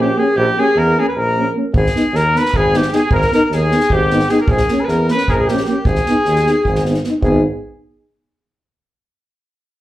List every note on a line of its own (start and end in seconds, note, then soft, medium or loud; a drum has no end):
0.00 0.10 A#1 medium
0.00 0.08 C#4 medium
0.00 0.19 G4 medium
0.00 0.20 G4 medium
0.16 0.24 A#3 medium
0.16 0.27 C#4 medium
0.16 0.38 G#4 loud
0.16 0.38 G#4 medium
0.36 0.48 A#1 loud
0.36 0.61 G4 loud
0.36 0.60 G4 loud
0.57 0.65 A#3 medium
0.57 0.65 C#4 medium
0.57 0.80 G#4 loud
0.57 0.79 G#4 loud
0.75 0.98 E2 loud
0.75 1.01 A#4 loud
0.75 1.01 A#4 medium
0.98 1.06 A#3 soft
0.98 1.06 C#4 medium
0.98 1.07 G#4 loud
0.98 1.08 G#4 medium
1.08 1.17 B4 medium
1.08 1.21 B4 medium
1.15 1.48 A#1 medium
1.15 1.49 A#4 loud
1.15 1.51 A#4 medium
1.37 1.44 A#3 medium
1.37 1.44 C#4 medium
1.55 1.63 A#3 medium
1.55 1.63 C#4 medium
1.73 1.85 G#1 loud
1.73 2.17 G#4 loud
1.73 2.18 G#4 medium
1.73 kick loud
1.86 snare soft
1.95 2.02 B3 medium
1.95 2.04 D#4 medium
1.95 snare soft
2.12 2.35 D#2 medium
2.12 2.39 A#4 loud
2.12 snare soft
2.17 2.40 A#4 medium
2.34 2.42 B3 medium
2.34 2.44 D#4 soft
2.34 2.58 B4 loud
2.34 2.58 B4 medium
2.34 snare soft
2.45 snare soft
2.54 2.85 G#1 medium
2.54 2.78 G#4 loud
2.54 2.78 G#4 medium
2.54 kick medium
2.73 2.81 B3 medium
2.73 2.81 D#4 medium
2.73 2.97 G4 medium
2.73 2.95 G4 medium
2.73 snare soft
2.82 snare soft
2.92 3.01 B3 medium
2.92 3.00 D#4 medium
2.92 3.12 G#4 loud
2.92 3.13 G#4 medium
2.92 snare soft
3.11 3.22 G#1 loud
3.11 3.31 A#4 loud
3.11 3.33 A#4 medium
3.11 kick medium
3.22 snare soft
3.32 3.39 B3 medium
3.32 3.41 D#4 medium
3.32 3.44 A#4 loud
3.32 3.46 A#4 loud
3.32 snare soft
3.44 3.55 A#4 medium
3.44 3.57 A#4 medium
3.51 3.73 D#2 medium
3.51 3.93 G#4 medium
3.51 snare soft
3.55 3.96 G#4 loud
3.71 3.79 B3 medium
3.71 3.80 D#4 medium
3.71 snare soft
3.80 snare soft
3.90 4.22 G#1 loud
3.90 4.31 G4 medium
3.90 4.33 G4 loud
3.90 kick medium
4.10 4.19 B3 medium
4.10 4.19 D#4 medium
4.10 snare soft
4.19 snare soft
4.29 4.37 B3 medium
4.29 4.38 D#4 medium
4.29 4.41 G#4 medium
4.29 4.40 G#4 medium
4.29 snare soft
4.40 4.50 A#4 medium
4.40 4.53 A#4 medium
4.48 4.60 A#1 loud
4.48 4.82 G#4 loud
4.48 4.86 G#4 medium
4.48 kick loud
4.57 snare soft
4.68 4.77 A#3 medium
4.68 4.78 C#4 medium
4.68 snare soft
4.81 4.88 B4 medium
4.85 5.10 E2 medium
4.85 5.08 A#4 medium
4.85 4.92 B4 medium
4.85 snare soft
4.90 5.10 A#4 medium
5.08 5.16 A#3 medium
5.08 5.30 B4 loud
5.08 5.31 B4 medium
5.08 snare soft
5.13 5.20 C#4 medium
5.18 snare soft
5.28 5.59 A#1 medium
5.28 5.33 G#4 loud
5.28 5.39 A#4 medium
5.28 5.41 A#4 medium
5.28 kick medium
5.37 5.48 G#4 medium
5.37 5.51 G#4 loud
5.47 5.57 A#3 medium
5.47 5.66 G4 medium
5.47 5.67 G4 medium
5.47 snare soft
5.52 5.58 C#4 medium
5.57 snare soft
5.65 5.74 A#3 medium
5.65 5.75 C#4 medium
5.65 5.88 G4 medium
5.65 snare soft
5.85 5.97 G#1 medium
5.85 7.04 G#4 medium
5.85 7.04 G#4 loud
5.85 kick medium
5.95 snare soft
6.06 6.15 B3 medium
6.06 6.16 D#4 medium
6.06 snare soft
6.25 6.48 D#2 medium
6.25 snare soft
6.36 snare soft
6.46 6.54 B3 soft
6.46 6.55 D#4 medium
6.46 snare soft
6.65 6.97 G#1 medium
6.65 kick medium
6.75 snare soft
6.85 6.93 B3 medium
6.85 snare soft
6.90 6.96 D#4 soft
6.94 snare soft
7.03 7.11 B3 medium
7.03 snare soft
7.08 7.14 D#4 medium
7.21 7.41 G#1 medium
7.21 7.42 B3 medium
7.21 7.44 D#4 medium
7.21 7.42 G#4 medium
7.21 kick medium